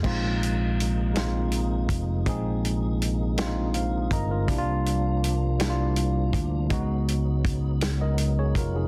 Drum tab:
CC |x-----|------|------|------|
HH |-xxxxx|xxxxxx|xxxxxx|xxxxxx|
SD |---o--|---o--|---o--|---o--|
BD |o----o|o----o|o----o|o-o--o|